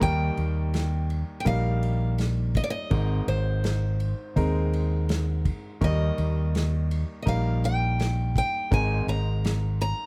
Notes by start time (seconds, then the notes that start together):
0.00 D#2 D#3 G3 A#3 D#4 A#4 G5, kick, ride
0.37 D#2, ride
0.74 snare, ride
1.10 ride
1.40 G5
1.45 A#1 G3 A#3 D#4 A#4 F5, kick, ride
1.83 ride
2.18 snare, ride
2.55 D#5, kick, ride
2.64 D5
2.70 D#5
2.90 G#1 G#2 G#3 C4 D#4 A#4, kick, ride
3.27 G#1 C5, ride
3.64 snare, ride
4.00 ride
4.36 D#2 G#3 C4 D#4 A#4, kick, ride
4.73 ride
5.09 snare, ride
5.45 kick, ride
5.81 D#2 D#3 G3 A#3 D#4 A#4 D#5, kick, ride
6.18 D#2, ride
6.55 snare, ride
6.91 ride
7.22 G3 A#3 D#4 A#4 D#5
7.27 A#1 F5, kick, ride
7.64 G5, ride
8.00 snare, ride
8.36 G5, kick, ride
8.71 G#1 G#2 G#3 C4 D#4 A#4 G#5, kick, ride
9.07 G#1 A#5, ride
9.45 snare, ride
9.81 A#5, ride